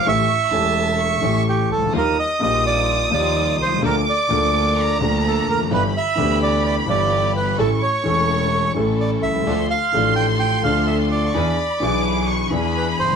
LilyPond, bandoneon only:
\new Staff \with { instrumentName = "Bandoneon" } { \time 4/4 \key a \phrygian \tempo 4 = 128 e''2. g'8 a'8 | bes'8 ees''8 ees''8 d''4 d''4 c''8 | bes'8 d''2 r8 a'8 bes'8 | b'8 e''4 d''8 d''8 d''4 b'8 |
a'8 cis''2 r8 d''8 e''8~ | e''8 f''4 g''8 g''8 f''8 e''8 d''8~ | d''4. r4. b'8 c''8 | }